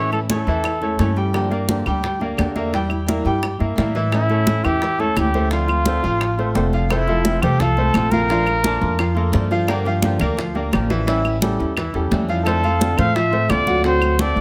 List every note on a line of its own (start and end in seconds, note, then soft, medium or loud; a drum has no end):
0.00 0.41 A2 medium
0.00 0.11 E3 medium
0.00 0.24 E3 medium
0.00 0.11 A3 medium
0.00 0.11 C#4 medium
0.00 0.24 E4 medium
0.00 0.12 C#5 medium
0.00 0.24 E5 medium
0.11 0.29 A3 soft
0.11 0.29 C#4 soft
0.11 0.28 E4 soft
0.11 0.20 A4 medium
0.11 high bongo soft
0.11 high conga soft
0.11 claves medium
0.29 0.46 E3 medium
0.29 0.47 A3 medium
0.29 0.44 A3 medium
0.29 0.46 C#4 medium
0.29 0.45 E4 medium
0.29 0.44 A4 medium
0.29 1.13 A4 medium
0.29 0.45 C#5 medium
0.29 high bongo medium
0.29 high conga medium
0.46 0.95 E2 medium
0.46 0.76 E3 medium
0.46 0.63 A3 soft
0.46 0.63 C#4 soft
0.46 0.63 E4 soft
0.46 0.76 E4 medium
0.46 0.76 E5 medium
0.46 high bongo soft
0.64 muted nylon-string guitar stroke medium
0.64 high bongo medium
0.64 high conga soft
0.64 claves medium
0.81 0.96 A3 medium
0.81 0.98 A3 soft
0.81 0.99 C#4 soft
0.81 0.98 E4 soft
0.81 0.96 A4 medium
0.81 0.97 C#5 medium
0.81 high conga soft
0.98 1.80 G2 medium
0.98 1.33 E3 medium
0.98 1.33 A3 medium
0.98 1.14 A3 medium
0.98 1.34 C#4 medium
0.98 1.34 E4 medium
0.98 1.14 A4 medium
0.98 1.14 C#5 medium
0.98 high bongo medium
0.98 low bongo medium
0.98 high conga medium
1.16 1.45 G3 medium
1.16 1.45 G4 medium
1.16 1.46 G5 medium
1.16 high bongo soft
1.16 high conga soft
1.33 1.50 D3 medium
1.33 1.51 F3 medium
1.33 1.51 A#3 medium
1.33 1.50 D4 medium
1.33 1.49 G4 medium
1.33 high bongo medium
1.33 high conga soft
1.33 claves medium
1.50 1.80 A#3 medium
1.50 1.67 A#3 soft
1.50 1.68 D4 soft
1.50 1.67 G4 soft
1.50 1.80 A#4 medium
1.50 1.80 D5 medium
1.50 high bongo soft
1.50 high conga soft
1.68 1.85 D3 medium
1.68 1.85 F3 medium
1.68 1.85 A#3 medium
1.68 1.86 D4 medium
1.68 1.85 G4 medium
1.68 high bongo soft
1.68 high conga medium
1.86 2.35 D2 medium
1.86 2.01 G3 medium
1.86 2.02 A#3 soft
1.86 2.02 D4 soft
1.86 2.02 G4 soft
1.86 2.01 G4 medium
1.86 2.01 G5 medium
1.86 high bongo soft
1.86 high conga soft
1.86 claves medium
2.03 2.18 G3 medium
2.03 2.18 G4 medium
2.03 2.18 G5 medium
2.03 muted nylon-string guitar stroke medium
2.03 high bongo medium
2.03 high conga soft
2.19 2.38 A#3 soft
2.19 2.50 A#3 medium
2.19 2.37 D4 soft
2.19 2.37 G4 soft
2.19 2.50 A#4 medium
2.19 2.50 D5 medium
2.19 high conga soft
2.37 3.20 E2 medium
2.37 2.72 D3 medium
2.37 2.73 A#3 medium
2.37 2.73 D4 medium
2.37 2.73 G4 medium
2.37 high bongo medium
2.37 low bongo medium
2.37 high conga medium
2.37 claves medium
2.56 2.70 A#3 medium
2.56 2.70 A#4 medium
2.56 2.71 E5 medium
2.56 high bongo soft
2.56 high conga medium
2.73 2.90 E3 medium
2.73 2.90 G3 medium
2.73 3.02 G3 medium
2.73 2.88 E4 medium
2.73 3.02 G4 medium
2.73 3.03 G5 medium
2.73 high bongo medium
2.73 high conga soft
2.89 3.06 G3 soft
2.89 3.07 E4 soft
2.89 high bongo soft
2.89 high conga soft
2.89 claves medium
3.06 3.24 E3 medium
3.06 3.25 G3 medium
3.06 3.22 A#3 medium
3.06 3.23 E4 medium
3.06 3.23 A#4 medium
3.06 3.23 E5 medium
3.06 high bongo medium
3.06 high conga medium
3.24 3.57 G2 medium
3.24 3.54 G3 medium
3.24 3.41 G3 soft
3.24 3.42 E4 soft
3.24 3.54 G4 medium
3.24 3.55 G5 medium
3.24 high bongo soft
3.42 muted nylon-string guitar stroke medium
3.42 high bongo medium
3.42 high conga soft
3.42 claves medium
3.59 3.76 G2 medium
3.59 3.76 G3 soft
3.59 3.75 A#3 medium
3.59 3.76 E4 soft
3.59 3.75 A#4 medium
3.59 3.75 E5 medium
3.59 high conga soft
3.76 4.59 A2 medium
3.76 4.10 E3 medium
3.76 4.11 G3 medium
3.76 3.92 A#3 medium
3.76 4.12 E4 medium
3.76 3.92 A#4 medium
3.76 3.92 E5 medium
3.76 high bongo medium
3.76 low bongo medium
3.76 high conga medium
3.95 4.24 E3 medium
3.95 4.24 E4 medium
3.95 4.24 E5 medium
3.95 high bongo soft
3.95 high conga soft
4.11 4.29 E3 medium
4.11 4.29 A3 medium
4.11 4.29 C#4 medium
4.11 4.66 E4 medium
4.11 4.28 E4 medium
4.11 high bongo medium
4.11 high conga soft
4.11 claves medium
4.29 4.58 A3 medium
4.29 4.47 A3 soft
4.29 4.47 C#4 soft
4.29 4.46 E4 soft
4.29 4.59 A4 medium
4.29 4.59 C#5 medium
4.29 high bongo soft
4.29 high conga soft
4.47 4.64 E3 medium
4.47 4.64 A3 medium
4.47 4.64 C#4 medium
4.47 4.63 E4 medium
4.47 high bongo soft
4.47 high conga medium
4.64 5.13 E2 medium
4.64 4.79 E3 medium
4.64 4.81 A3 soft
4.64 4.81 C#4 soft
4.64 4.81 E4 soft
4.64 4.79 E4 medium
4.64 5.01 G4 medium
4.64 4.80 E5 medium
4.64 high bongo soft
4.64 high conga soft
4.64 claves medium
4.81 4.97 E3 medium
4.81 4.97 E4 medium
4.81 4.97 E5 medium
4.81 muted nylon-string guitar stroke medium
4.81 high bongo medium
4.81 high conga soft
4.98 5.28 A3 medium
4.98 5.15 A3 soft
4.98 5.16 C#4 soft
4.98 5.16 E4 soft
4.98 5.28 A4 medium
4.98 5.17 A4 medium
4.98 5.28 C#5 medium
4.98 high conga soft
5.15 5.98 D2 medium
5.15 5.50 E3 medium
5.15 5.50 A3 medium
5.15 5.51 C#4 medium
5.15 5.51 E4 medium
5.15 5.50 G4 medium
5.15 high bongo medium
5.15 low bongo medium
5.15 high conga medium
5.15 claves medium
5.34 5.49 A3 medium
5.34 5.49 A4 medium
5.34 5.49 C5 medium
5.34 high bongo soft
5.34 high conga medium
5.50 5.68 D3 medium
5.50 5.81 F3 medium
5.50 5.68 A3 medium
5.50 5.68 C4 medium
5.50 6.70 F4 medium
5.50 5.66 F4 medium
5.50 5.81 F4 medium
5.50 5.81 F5 medium
5.50 high bongo medium
5.50 high conga soft
5.68 5.85 A3 soft
5.68 5.86 C4 soft
5.68 5.85 F4 soft
5.68 high bongo soft
5.68 high conga soft
5.68 claves medium
5.86 6.03 D3 medium
5.86 6.03 A3 medium
5.86 6.01 A3 medium
5.86 6.03 C4 medium
5.86 6.01 F4 medium
5.86 6.01 A4 medium
5.86 6.01 C5 medium
5.86 high bongo soft
5.86 high conga medium
6.02 6.52 A1 medium
6.02 6.32 F3 medium
6.02 6.20 A3 soft
6.02 6.20 C4 soft
6.02 6.20 F4 soft
6.02 6.33 F4 medium
6.02 6.33 F5 medium
6.02 high bongo soft
6.20 muted nylon-string guitar stroke medium
6.20 high bongo medium
6.20 high conga soft
6.20 claves medium
6.37 6.53 A3 medium
6.37 6.54 A3 soft
6.37 6.54 C4 soft
6.37 6.55 F4 soft
6.37 6.53 A4 medium
6.37 6.53 C5 medium
6.37 high conga soft
6.54 7.37 F1 medium
6.54 6.89 D3 medium
6.54 6.89 A3 medium
6.54 6.70 A3 medium
6.54 6.90 C4 medium
6.54 6.90 F4 medium
6.54 6.71 A4 medium
6.54 6.71 C5 medium
6.54 high bongo medium
6.54 low bongo medium
6.54 high conga medium
6.73 6.88 F3 medium
6.73 6.88 F4 medium
6.73 6.88 F5 medium
6.73 high bongo soft
6.73 high conga soft
6.89 7.07 C3 medium
6.89 7.07 E3 medium
6.89 7.07 A3 medium
6.89 7.05 A3 medium
6.89 7.07 C4 medium
6.89 7.44 E4 medium
6.89 7.05 F4 medium
6.89 7.05 A4 medium
6.89 7.06 C5 medium
6.89 high bongo medium
6.89 high conga soft
6.89 claves medium
7.07 7.37 F3 medium
7.07 7.24 A3 soft
7.07 7.25 C4 soft
7.07 7.24 F4 soft
7.07 7.37 A4 medium
7.07 7.37 E5 medium
7.07 high bongo soft
7.07 high conga soft
7.24 7.42 C3 medium
7.24 7.42 E3 medium
7.24 7.42 A3 medium
7.24 7.42 C4 medium
7.24 7.40 F4 medium
7.24 high bongo soft
7.24 high conga medium
7.41 7.91 C2 medium
7.41 7.57 A3 medium
7.41 7.59 A3 soft
7.41 7.59 C4 soft
7.41 7.59 F4 soft
7.41 7.61 G4 medium
7.41 7.58 A4 medium
7.41 7.58 C5 medium
7.41 high bongo soft
7.41 high conga soft
7.41 low conga medium
7.41 claves medium
7.59 7.75 F3 medium
7.59 7.75 F4 medium
7.59 8.13 A4 loud
7.59 7.75 F5 medium
7.59 muted nylon-string guitar stroke medium
7.59 high bongo medium
7.59 high conga soft
7.59 low conga medium
7.77 8.06 A3 medium
7.77 7.94 A3 soft
7.77 7.95 C4 soft
7.77 7.94 F4 soft
7.77 8.06 A4 medium
7.77 8.07 C5 medium
7.77 high conga soft
7.94 8.76 A#1 medium
7.94 8.29 C3 medium
7.94 8.29 A3 medium
7.94 8.30 C4 medium
7.94 8.30 F4 medium
7.94 high bongo medium
7.94 low bongo medium
7.94 high conga medium
7.94 claves medium
8.11 8.27 F3 medium
8.11 8.27 F4 medium
8.11 9.16 A#4 loud
8.11 8.27 F5 medium
8.11 high bongo soft
8.11 high conga medium
8.29 8.46 F3 medium
8.29 8.59 F3 medium
8.29 8.47 A3 medium
8.29 8.46 D4 medium
8.29 8.59 F4 medium
8.29 8.45 F4 medium
8.29 8.59 F5 medium
8.29 high bongo medium
8.29 high conga soft
8.46 8.63 A3 soft
8.46 8.64 D4 soft
8.46 8.63 F4 soft
8.46 high bongo soft
8.46 high conga soft
8.46 claves medium
8.63 8.81 F3 medium
8.63 8.81 A3 medium
8.63 8.93 A#3 medium
8.63 8.81 D4 medium
8.63 8.80 F4 medium
8.63 8.94 A#4 medium
8.63 8.94 A5 medium
8.63 high bongo medium
8.63 high conga medium
8.81 9.30 F2 medium
8.81 8.98 A3 soft
8.81 8.98 D4 soft
8.81 8.98 F4 soft
8.81 high bongo soft
8.98 9.13 F3 medium
8.98 9.14 F4 medium
8.98 9.14 F5 medium
8.98 muted nylon-string guitar stroke medium
8.98 high bongo medium
8.98 high conga soft
8.98 claves medium
9.15 9.32 A3 soft
9.15 9.45 A#3 medium
9.15 9.33 D4 soft
9.15 9.32 F4 soft
9.15 9.45 A4 medium
9.15 9.45 A#4 medium
9.15 high conga soft
9.32 10.15 G2 medium
9.32 9.66 F3 medium
9.32 9.68 A3 medium
9.32 9.68 D4 medium
9.32 9.68 F4 medium
9.32 high bongo medium
9.32 low bongo medium
9.32 high conga medium
9.51 9.65 F3 medium
9.51 9.66 F4 medium
9.51 9.66 F5 medium
9.51 high bongo soft
9.51 high conga soft
9.67 9.84 D3 medium
9.67 9.85 F3 medium
9.67 9.85 A#3 medium
9.67 9.83 A#3 medium
9.67 9.85 D4 medium
9.67 9.84 G4 medium
9.67 9.83 A#4 medium
9.67 9.83 D5 medium
9.67 high bongo medium
9.67 high conga soft
9.67 claves medium
9.85 10.15 F3 medium
9.85 10.02 A#3 soft
9.85 10.03 D4 soft
9.85 10.15 F4 medium
9.85 10.02 G4 medium
9.85 10.15 F5 medium
9.85 high bongo soft
9.85 high conga soft
10.02 10.19 D3 medium
10.02 10.20 F3 medium
10.02 10.20 A#3 medium
10.02 10.20 D4 medium
10.02 10.19 G4 medium
10.02 high bongo soft
10.02 high conga medium
10.20 10.69 D2 medium
10.20 10.35 A#3 medium
10.20 10.37 A#3 soft
10.20 10.37 D4 soft
10.20 10.37 G4 soft
10.20 10.35 A#4 medium
10.20 10.35 D5 medium
10.20 high bongo soft
10.20 high conga soft
10.20 low conga medium
10.20 claves medium
10.37 10.52 F3 medium
10.37 10.52 F4 medium
10.37 10.53 F5 medium
10.37 muted nylon-string guitar stroke medium
10.37 high bongo medium
10.37 high conga soft
10.54 10.84 A#3 medium
10.54 10.71 A#3 soft
10.54 10.72 D4 medium
10.54 10.72 G4 soft
10.54 10.84 A#4 medium
10.54 10.84 D5 medium
10.54 high conga soft
10.71 11.54 A1 medium
10.71 11.06 D3 medium
10.71 11.06 F3 medium
10.71 11.06 A#3 medium
10.71 11.07 D4 medium
10.71 11.07 G4 medium
10.71 high bongo medium
10.71 low bongo medium
10.71 high conga medium
10.71 claves medium
10.90 11.04 E3 medium
10.90 11.05 E4 medium
10.90 11.05 E5 medium
10.90 high bongo soft
10.90 high conga medium
11.06 11.23 E3 medium
11.06 11.36 E3 medium
11.06 11.24 G3 medium
11.06 11.23 C#4 medium
11.06 11.36 E4 medium
11.06 11.22 E4 medium
11.06 11.36 E5 medium
11.06 high bongo medium
11.06 high conga soft
11.23 11.40 G3 soft
11.23 11.41 C#4 soft
11.23 11.41 E4 soft
11.23 high bongo soft
11.23 high conga soft
11.23 claves medium
11.40 11.58 E3 medium
11.40 11.58 G3 medium
11.40 11.70 G3 medium
11.40 11.59 C#4 medium
11.40 11.58 E4 medium
11.40 11.71 G4 medium
11.40 11.71 A4 medium
11.40 high bongo soft
11.40 high conga medium
11.59 11.92 E2 medium
11.59 11.75 G3 soft
11.59 11.76 C#4 soft
11.59 11.76 E4 soft
11.59 high bongo soft
11.76 11.91 E3 medium
11.76 11.91 E4 medium
11.76 11.92 E5 medium
11.76 muted nylon-string guitar stroke medium
11.76 high bongo medium
11.76 high conga soft
11.76 claves medium
11.93 12.10 E2 medium
11.93 12.23 G3 medium
11.93 12.11 G3 soft
11.93 12.11 C#4 soft
11.93 12.10 E4 medium
11.93 12.23 G4 medium
11.93 12.23 A4 medium
11.93 high conga soft
12.11 12.92 F2 medium
12.11 12.44 E3 medium
12.11 12.45 G3 medium
12.11 12.46 C#4 medium
12.11 12.46 E4 medium
12.11 high bongo medium
12.11 low bongo medium
12.11 high conga medium
12.29 12.43 F3 medium
12.29 12.43 F4 medium
12.29 12.44 F5 medium
12.29 high bongo soft
12.29 high conga soft
12.44 12.62 D3 medium
12.44 12.63 A3 medium
12.44 12.61 A3 medium
12.44 12.63 C4 medium
12.44 12.62 F4 medium
12.44 13.00 A4 medium
12.44 12.61 A4 medium
12.44 12.61 C5 medium
12.44 high bongo medium
12.44 high conga soft
12.44 claves medium
12.63 12.92 F3 medium
12.63 12.79 A3 soft
12.63 12.80 C4 soft
12.63 12.80 F4 soft
12.63 12.92 F4 medium
12.63 12.93 F5 medium
12.63 high bongo soft
12.63 high conga soft
12.79 12.97 D3 medium
12.79 12.97 A3 medium
12.79 12.97 C4 medium
12.79 12.96 F4 medium
12.79 high bongo soft
12.79 high conga loud
12.97 13.46 A2 medium
12.97 13.13 A3 medium
12.97 13.14 A3 soft
12.97 13.14 C4 soft
12.97 13.14 F4 soft
12.97 13.13 A4 medium
12.97 13.13 C5 medium
12.97 13.17 F5 loud
12.97 high bongo soft
12.97 high conga soft
12.97 low conga loud
12.97 claves medium
13.15 13.30 F3 medium
13.15 13.30 F4 medium
13.15 13.51 E5 loud
13.15 13.30 F5 medium
13.15 muted nylon-string guitar stroke medium
13.15 high bongo medium
13.15 high conga soft
13.31 13.61 A3 medium
13.31 13.48 A3 soft
13.31 13.49 C4 soft
13.31 13.49 F4 soft
13.31 13.61 A4 medium
13.31 13.62 C5 medium
13.31 high conga soft
13.49 14.31 D2 medium
13.49 13.82 D3 medium
13.49 13.83 A3 medium
13.49 13.84 C4 medium
13.49 13.84 F4 medium
13.49 13.85 D5 loud
13.49 high bongo medium
13.49 low bongo medium
13.49 high conga medium
13.49 claves medium
13.67 13.82 F#3 medium
13.67 13.82 F#4 medium
13.67 13.82 F#5 medium
13.67 high bongo soft
13.67 high conga medium
13.83 14.01 D3 medium
13.83 14.13 F#3 medium
13.83 14.01 A3 medium
13.83 14.01 C4 medium
13.83 14.14 F#4 medium
13.83 13.99 F#4 medium
13.83 14.22 C5 medium
13.83 14.14 F#5 medium
13.83 high bongo medium
13.83 high conga soft
14.01 14.18 A3 soft
14.01 14.18 C4 soft
14.01 14.18 F#4 medium
14.01 high bongo soft
14.01 high conga soft
14.01 claves medium
14.18 14.35 D3 medium
14.18 14.36 A3 medium
14.18 14.41 A3 medium
14.18 14.36 C4 medium
14.18 14.35 F#4 medium
14.18 14.41 A4 medium
14.18 14.41 C5 medium
14.18 14.41 D5 medium
14.18 high bongo soft
14.18 high conga medium
14.36 14.41 A1 medium
14.36 14.41 C4 soft
14.36 14.41 F#4 soft
14.36 high bongo soft